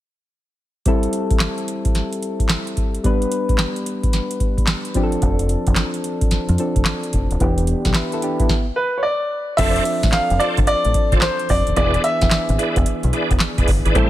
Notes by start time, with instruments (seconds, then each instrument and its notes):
0.86 synth keys G3 C4 E4 A4, kick, closed hi-hat
1.03 closed hi-hat
1.13 closed hi-hat
1.31 kick, closed hi-hat
1.40 snare, clap, closed hi-hat
1.58 closed hi-hat
1.68 closed hi-hat
1.85 kick, closed hi-hat
1.95 snare, closed hi-hat
2.13 closed hi-hat
2.22 closed hi-hat
2.40 kick, closed hi-hat
2.49 snare, clap, closed hi-hat
2.67 closed hi-hat
2.77 kick, closed hi-hat
2.95 closed hi-hat
3.04 synth keys G3 B3 D4 B4, kick, closed hi-hat
3.22 closed hi-hat
3.32 closed hi-hat
3.49 kick, closed hi-hat
3.58 snare, clap, closed hi-hat
3.76 closed hi-hat
3.86 closed hi-hat
4.03 kick, closed hi-hat
4.13 snare, closed hi-hat
4.31 closed hi-hat
4.40 kick, closed hi-hat
4.58 kick, closed hi-hat
4.67 snare, clap, closed hi-hat
4.85 closed hi-hat
4.94 synth keys F3 C4 D4 G4, kick, closed hi-hat
5.03 synth keys A4
5.12 closed hi-hat
5.22 fingered electric bass F1, kick, closed hi-hat
5.39 closed hi-hat
5.49 closed hi-hat
5.67 fingered electric bass F1, kick, closed hi-hat
5.76 snare, clap, closed hi-hat
5.94 closed hi-hat
6.04 closed hi-hat
6.21 kick, closed hi-hat
6.31 muted fingered electric bass stroke, snare, closed hi-hat
6.49 fingered electric bass F2, closed hi-hat
6.58 synth keys F3 C4 D4 A4, closed hi-hat
6.76 fingered electric bass F1, kick, closed hi-hat
6.85 snare, clap, closed hi-hat
7.03 closed hi-hat
7.13 fingered electric bass F1, kick, closed hi-hat
7.31 fingered electric bass D#1, closed hi-hat
7.40 fingered electric bass E1, synth keys E3 B3 D4 G4, kick, closed hi-hat
7.58 closed hi-hat
7.67 closed hi-hat
7.85 fingered electric bass B1, kick, snare, closed hi-hat
7.94 synth keys E4 B4, snare, clap, closed hi-hat
8.12 synth keys E4 A4, closed hi-hat
8.22 synth keys D4 G4, closed hi-hat
8.40 synth keys B3 E4, kick, closed hi-hat
8.49 kick, snare
8.76 grand piano B4
8.98 grand piano C#5
9.03 grand piano D5
9.57 fingered electric bass F1, synth keys F3 C4 D4 A4, tonewheel organ F4 A4 C5 D5, grand piano E5, kick, closed hi-hat, crash
9.76 closed hi-hat
9.85 closed hi-hat
10.03 fingered electric bass A1, kick, snare, closed hi-hat
10.12 grand piano F5, muted fingered electric bass stroke, snare, clap, closed hi-hat
10.30 fingered electric bass F1, closed hi-hat
10.39 tonewheel organ F4 A4 C5 D5, grand piano D5, closed hi-hat
10.57 fingered electric bass G1, kick, closed hi-hat
10.67 grand piano D5, closed hi-hat
10.85 fingered electric bass A1, closed hi-hat
10.94 kick, closed hi-hat
11.12 fingered electric bass G1, tonewheel organ F4 A4 C5 D5, kick, closed hi-hat
11.21 grand piano C5, snare, clap, closed hi-hat
11.39 closed hi-hat
11.49 fingered electric bass F1, grand piano D5, kick, open hi-hat
11.67 fingered electric bass D#1, closed hi-hat
11.76 fingered electric bass E1, synth keys E3 B3 D4 G#4, tonewheel organ E4 G#4 B4 D5, grand piano D5, kick, closed hi-hat
11.94 closed hi-hat
12.04 grand piano E5, closed hi-hat
12.21 fingered electric bass E1, kick, snare, closed hi-hat
12.31 muted fingered electric bass stroke, snare, clap, closed hi-hat
12.49 fingered electric bass G#1, closed hi-hat
12.58 tonewheel organ E4 G#4 B4 D5, closed hi-hat
12.76 fingered electric bass E1, kick, closed hi-hat
12.86 muted fingered electric bass stroke, closed hi-hat
13.03 fingered electric bass B1, closed hi-hat
13.13 tonewheel organ E4 G#4 B4 D5, closed hi-hat
13.30 fingered electric bass E1, kick, closed hi-hat
13.40 snare, clap, closed hi-hat
13.58 fingered electric bass E1, tonewheel organ E4 G#4 B4 D5, kick, closed hi-hat
13.68 fingered electric bass G1, kick, open hi-hat
13.85 fingered electric bass G#1, tonewheel organ E4 G#4 B4 D5, closed hi-hat
13.95 fingered electric bass A1, synth keys G3 C4 E4 A4, tonewheel organ E4 G4 A4 C5, kick, closed hi-hat